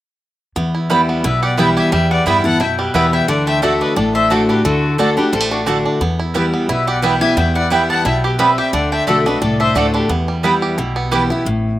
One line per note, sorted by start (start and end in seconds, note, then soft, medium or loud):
0.56 1.08 E2 medium
0.56 1.21 E2 medium
0.56 1.09 B3 medium
0.75 1.24 E4 medium
0.90 1.23 E3 medium
0.90 1.39 G3 medium
0.90 1.23 G3 medium
0.90 1.00 B3 medium
0.90 1.23 B3 medium
0.90 1.00 E4 medium
0.90 1.23 E4 medium
0.90 1.00 B4 loud
0.90 1.00 G5 medium
1.09 1.56 B3 medium
1.24 1.76 B1 medium
1.24 1.89 B2 medium
1.24 1.73 E4 medium
1.24 1.41 B4 medium
1.24 1.42 E5 medium
1.43 1.75 G4 medium
1.43 1.58 D5 medium
1.43 1.58 F#5 medium
1.57 1.91 E3 medium
1.57 1.91 G3 medium
1.57 1.68 B3 medium
1.57 1.91 B3 medium
1.57 1.68 E4 medium
1.57 1.92 E4 medium
1.57 1.68 B4 medium
1.57 1.76 E5 medium
1.57 1.76 G5 medium
1.57 1.68 G5 loud
1.77 2.23 G4 medium
1.77 1.92 E5 medium
1.77 1.92 G#5 loud
1.92 2.57 E2 medium
1.92 2.18 E2 loud
1.92 2.41 G3 medium
1.92 2.10 E5 medium
1.92 2.11 G5 medium
2.11 2.58 B3 medium
2.11 2.26 D5 medium
2.11 2.26 F#5 medium
2.26 2.55 G2 medium
2.26 2.44 E3 medium
2.26 2.44 G3 medium
2.26 2.36 B3 medium
2.26 2.44 B3 medium
2.26 2.36 E4 medium
2.26 2.59 E4 medium
2.26 2.43 E4 medium
2.26 2.37 B4 medium
2.26 2.44 E5 medium
2.26 2.45 G5 medium
2.26 2.37 G5 medium
2.44 2.60 B3 medium
2.44 2.60 E4 medium
2.44 2.60 F#5 medium
2.44 2.60 A5 medium
2.60 2.90 F#2 medium
2.60 3.25 B2 medium
2.60 3.09 E4 medium
2.60 2.78 E5 medium
2.60 2.78 G5 medium
2.79 3.25 G3 medium
2.79 2.94 G4 soft
2.79 2.94 B4 medium
2.94 3.23 E2 medium
2.94 3.27 E3 medium
2.94 3.27 G3 medium
2.94 3.04 B3 medium
2.94 3.28 B3 medium
2.94 3.27 B3 medium
2.94 3.04 E4 medium
2.94 3.28 E4 medium
2.94 3.12 B4 medium
2.94 3.05 B4 medium
2.94 3.12 E5 medium
2.94 3.05 G5 loud
3.13 3.29 E4 medium
3.13 3.27 E5 medium
3.13 3.28 G5 loud
3.28 3.80 D2 medium
3.28 3.61 D3 medium
3.28 3.63 D4 medium
3.28 3.46 D5 medium
3.28 3.46 F#5 medium
3.47 4.64 A3 medium
3.47 3.62 E5 medium
3.47 3.62 G5 loud
3.62 3.95 D3 medium
3.62 3.72 A3 medium
3.62 3.95 A3 medium
3.62 3.80 D4 medium
3.62 3.96 D4 medium
3.62 3.72 F#4 medium
3.62 3.96 F#4 medium
3.62 3.80 A4 medium
3.62 3.73 D5 medium
3.62 3.81 E5 medium
3.62 3.73 A5 medium
3.81 3.96 D4 medium
3.81 3.96 B4 medium
3.81 3.96 D#5 medium
3.96 4.48 A1 medium
3.96 4.62 A2 medium
3.96 4.14 D4 medium
3.96 4.14 A4 medium
3.96 4.15 D5 medium
4.14 4.30 D4 medium
4.14 4.29 C5 medium
4.14 4.30 E5 loud
4.30 4.63 D3 medium
4.30 4.40 A3 medium
4.30 4.63 A3 medium
4.30 4.48 D4 medium
4.30 4.64 D4 medium
4.30 4.41 F#4 medium
4.30 4.64 F#4 medium
4.30 4.47 A4 medium
4.30 4.49 C5 medium
4.30 4.41 D5 medium
4.30 4.41 A5 loud
4.49 4.96 D4 medium
4.49 4.64 G4 medium
4.49 4.64 B4 medium
4.64 5.16 D2 medium
4.64 4.97 D3 medium
4.64 5.14 A3 medium
4.64 4.96 F#4 medium
4.64 4.96 A4 medium
4.98 5.16 D3 medium
4.98 5.08 A3 medium
4.98 5.17 A3 medium
4.98 5.16 D4 medium
4.98 5.17 D4 medium
4.98 5.09 F#4 medium
4.98 5.16 F#4 medium
4.98 5.16 A4 medium
4.98 5.17 D5 medium
4.98 5.09 D5 medium
4.98 5.09 A5 medium
5.17 5.50 D4 medium
5.17 5.33 D4 soft
5.17 5.32 F#4 medium
5.17 5.32 G4 medium
5.17 5.32 B4 medium
5.33 5.84 A1 medium
5.33 5.98 A2 medium
5.33 5.40 G3 medium
5.33 5.50 A4 medium
5.33 5.51 C5 loud
5.40 5.67 A3 medium
5.51 5.66 D4 medium
5.51 5.61 F#4 medium
5.66 5.99 D3 medium
5.66 5.76 A3 medium
5.66 6.00 A3 medium
5.66 5.84 D4 medium
5.66 6.00 D4 medium
5.66 5.77 F#4 medium
5.66 6.00 F#4 medium
5.66 5.77 D5 loud
5.66 5.77 A5 medium
5.86 6.01 D4 medium
6.01 6.52 E2 medium
6.01 6.66 E2 medium
6.01 6.53 B3 medium
6.19 6.69 E4 medium
6.34 6.67 E3 medium
6.34 6.68 G3 medium
6.34 6.84 G3 medium
6.34 6.44 B3 medium
6.34 6.68 B3 medium
6.34 6.45 E4 medium
6.34 6.68 E4 medium
6.34 6.45 B4 medium
6.34 6.45 G5 loud
6.54 7.00 B3 medium
6.69 7.20 B1 medium
6.69 7.34 B2 medium
6.69 7.18 E4 medium
6.69 6.86 B4 medium
6.69 6.87 E5 medium
6.87 7.21 G4 medium
6.87 7.02 D5 medium
6.87 7.02 F#5 medium
7.02 7.20 E3 medium
7.02 7.21 G3 medium
7.02 7.52 G3 medium
7.02 7.13 B3 medium
7.02 7.21 B3 medium
7.02 7.13 E4 medium
7.02 7.20 E4 medium
7.02 7.13 B4 loud
7.02 7.20 E5 medium
7.02 7.21 G5 medium
7.02 7.13 G5 medium
7.21 7.37 B3 soft
7.21 7.36 E4 medium
7.21 7.68 G4 medium
7.21 7.36 E5 medium
7.21 7.36 G#5 loud
7.37 7.89 E2 medium
7.37 8.02 E2 medium
7.37 7.86 B3 medium
7.37 7.54 E5 medium
7.37 7.55 G5 medium
7.55 8.02 E4 medium
7.55 7.70 D5 medium
7.55 7.71 F#5 loud
7.70 8.03 E3 medium
7.70 8.04 G3 medium
7.70 8.20 G3 medium
7.70 7.81 B3 medium
7.70 8.04 B3 medium
7.70 7.81 E4 medium
7.70 8.04 E4 medium
7.70 7.81 B4 medium
7.70 7.89 E5 medium
7.70 7.89 G5 medium
7.70 7.81 G5 loud
7.90 8.36 B3 medium
7.90 8.04 F#5 medium
7.90 8.05 A5 loud
8.05 8.57 B1 medium
8.05 8.38 B2 medium
8.05 8.54 E4 medium
8.05 8.23 E5 medium
8.05 8.23 G5 medium
8.24 8.38 G4 medium
8.24 8.57 G4 medium
8.24 8.39 B4 medium
8.39 8.74 G3 medium
8.39 8.49 B3 medium
8.39 8.72 C4 medium
8.39 8.49 E4 medium
8.39 8.49 B4 medium
8.39 8.57 B4 medium
8.39 8.57 E5 medium
8.39 8.49 G5 medium
8.58 8.74 G4 medium
8.58 8.72 E5 medium
8.58 8.73 G5 medium
8.73 8.99 D2 medium
8.73 9.06 D3 medium
8.73 8.91 D4 medium
8.73 8.91 D5 medium
8.73 8.91 F#5 medium
8.92 9.25 D4 medium
8.92 9.07 E5 medium
8.92 9.07 G5 loud
9.07 9.36 B1 medium
9.07 9.25 D3 medium
9.07 9.17 A3 medium
9.07 9.56 A3 medium
9.07 9.25 A3 medium
9.07 9.26 D4 medium
9.07 9.17 F#4 medium
9.07 9.25 F#4 medium
9.07 9.25 A4 medium
9.07 9.17 D5 medium
9.07 9.25 E5 medium
9.07 9.18 A5 loud
9.26 9.40 D4 medium
9.26 9.42 D4 soft
9.26 9.41 F#4 medium
9.26 9.41 B4 medium
9.26 9.41 D#5 medium
9.41 9.70 C2 medium
9.41 10.07 A2 medium
9.41 9.59 D4 medium
9.41 9.59 A4 medium
9.41 9.60 D5 medium
9.60 9.93 D4 medium
9.60 9.75 C5 medium
9.60 9.75 E5 loud
9.75 10.04 D2 medium
9.75 10.08 D3 medium
9.75 9.85 A3 medium
9.75 10.10 A3 medium
9.75 10.08 A3 medium
9.75 10.09 D4 medium
9.75 9.86 F#4 loud
9.75 10.09 F#4 medium
9.75 9.93 A4 medium
9.75 9.93 C5 medium
9.75 9.86 D5 loud
9.75 9.86 A5 medium
9.94 10.10 D4 medium
9.94 10.09 G4 medium
9.94 10.09 B4 medium
10.09 10.61 E2 medium
10.09 10.75 E2 medium
10.09 10.59 B3 medium
10.28 10.75 G3 medium
10.43 10.76 E3 soft
10.43 10.76 G3 medium
10.43 10.53 B3 medium
10.43 10.77 B3 medium
10.43 10.54 E4 medium
10.43 10.77 E4 medium
10.43 10.54 B4 medium
10.43 10.54 G5 medium
10.62 11.09 G4 medium
10.78 11.29 B1 medium
10.78 11.43 B2 medium
10.78 11.27 E4 medium
10.96 11.43 B3 medium
11.11 11.30 E3 medium
11.11 11.30 G3 medium
11.11 11.21 B3 medium
11.11 11.30 B3 medium
11.11 11.22 E4 medium
11.11 11.29 E4 medium
11.11 11.46 G4 medium
11.11 11.22 B4 medium
11.11 11.22 G5 medium
11.30 11.46 B3 soft
11.30 11.45 E4 medium
11.30 11.46 E4 medium
11.45 11.79 A1 loud
11.45 11.79 A2 medium